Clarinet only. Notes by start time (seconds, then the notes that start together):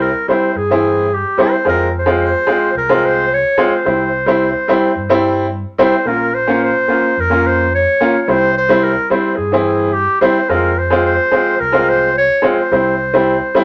0.02 A#4
0.29 C5
0.57 G#4
1.14 G4
1.42 C5
1.69 A#4
1.99 C5
2.25 C5
2.78 A#4
3.06 C5
3.34 C#5
3.64 C#5
3.74 C5
5.80 C5
6.07 A#4
6.35 C5
6.64 C5
7.20 A#4
7.47 C5
7.75 C#5
8.22 C#5
8.29 C5
8.58 C5
8.84 A#4
9.11 C5
9.36 G#4
9.93 G4
10.21 C5
10.50 A#4
10.78 C5
11.06 C5
11.60 A#4
11.89 C5
12.18 C#5
12.51 C#5
12.57 C5